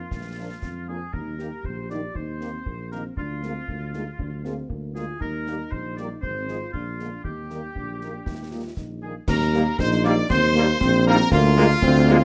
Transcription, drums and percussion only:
0.11 concert bass drum, snare
0.62 concert bass drum, snare
1.13 concert bass drum
1.39 snare
1.64 concert bass drum
1.90 snare
2.15 concert bass drum
2.41 snare
2.66 concert bass drum
2.92 snare
3.17 concert bass drum
3.43 snare
3.68 concert bass drum
3.94 snare
4.19 concert bass drum
4.45 snare
4.70 concert bass drum
4.95 snare
5.21 concert bass drum
5.47 snare
5.72 concert bass drum
5.97 snare
6.23 concert bass drum
6.48 snare
6.74 concert bass drum
6.99 snare
7.24 concert bass drum
7.50 snare
7.76 concert bass drum
8.01 snare
8.26 concert bass drum, snare
8.77 concert bass drum, snare
9.28 concert bass drum, snare, crash
9.41 snare
9.53 snare
9.79 concert bass drum, snare
9.92 snare
10.04 snare
10.30 concert bass drum, snare
10.55 snare
10.81 concert bass drum, snare
11.19 snare
11.32 concert bass drum, snare, crash
11.44 snare
11.57 snare
11.82 concert bass drum, snare
11.95 snare
12.08 snare

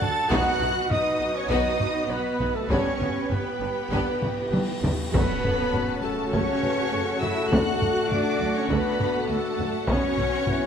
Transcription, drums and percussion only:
0.02 taiko low-mid
0.31 taiko
0.62 taiko low-mid
0.91 taiko low-mid
1.50 taiko
1.80 taiko low-mid
2.40 taiko low-mid
2.70 taiko
3.01 taiko low-mid
3.32 taiko low-mid
3.92 taiko
4.23 taiko low-mid
4.53 taiko high
4.84 taiko low
5.14 taiko
5.44 taiko low-mid
5.74 taiko low-mid
6.34 taiko
6.63 taiko low-mid
7.22 taiko low-mid
7.52 taiko
7.82 taiko low-mid
8.12 taiko low-mid
8.70 taiko
9.00 taiko low-mid
9.59 taiko low-mid
9.88 taiko
10.18 taiko low-mid
10.47 taiko low-mid

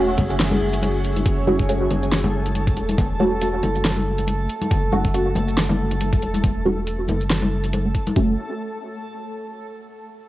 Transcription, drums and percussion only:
0.17 kick, closed hi-hat, muted conga, high conga, low conga
0.30 shaker
0.40 snare, closed hi-hat, crash
0.51 high conga
0.73 closed hi-hat, muted conga, shaker
0.82 closed hi-hat, crash, muted conga, high conga
1.04 closed hi-hat
1.16 closed hi-hat, high conga
1.26 kick, closed hi-hat, low conga
1.47 high conga
1.59 kick
1.69 closed hi-hat, shaker
1.90 closed hi-hat, muted conga, high conga, low conga
2.03 shaker
2.12 snare, closed hi-hat
2.24 muted conga, high conga, low conga
2.46 closed hi-hat, muted conga
2.55 closed hi-hat, high conga
2.67 kick, shaker
2.77 closed hi-hat, muted conga
2.89 closed hi-hat, high conga, shaker
2.98 kick, closed hi-hat, low conga
3.20 high conga
3.42 closed hi-hat, shaker
3.63 closed hi-hat, muted conga, high conga, low conga
3.75 shaker
3.85 snare, closed hi-hat
3.97 high conga
4.18 closed hi-hat, muted conga, shaker
4.27 closed hi-hat, muted conga, high conga
4.49 closed hi-hat
4.62 closed hi-hat, high conga
4.71 kick, closed hi-hat, low conga
4.92 high conga
5.05 kick
5.14 closed hi-hat, shaker
5.35 closed hi-hat, muted conga, high conga, low conga
5.48 shaker
5.57 snare, closed hi-hat
5.69 muted conga, high conga, low conga
5.91 closed hi-hat, muted conga
6.01 closed hi-hat, high conga
6.13 kick, shaker
6.22 closed hi-hat, muted conga
6.34 closed hi-hat, high conga, shaker
6.44 kick, closed hi-hat, low conga
6.66 high conga
6.87 closed hi-hat, shaker
7.08 closed hi-hat, muted conga, high conga, low conga
7.21 shaker
7.30 snare, closed hi-hat
7.42 high conga
7.64 closed hi-hat, muted conga, shaker
7.73 closed hi-hat, muted conga, high conga
7.95 kick, closed hi-hat
8.07 closed hi-hat, high conga
8.16 kick

